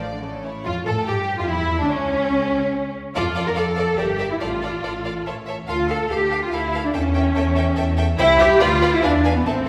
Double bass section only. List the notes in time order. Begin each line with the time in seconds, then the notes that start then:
Already playing: A1
0.65 F2
0.87 A2
1.08 G2
1.39 F2
1.50 E2
1.81 D2
1.92 C#2
3.16 F2
3.58 F2
4.00 G1
4.41 A1
4.83 A1
5.27 A1
5.69 D2
6.11 D2
6.53 D2
6.95 E2
7.36 E2
7.77 E2
8.19 C2
8.61 D2
9.03 E2
9.46 A1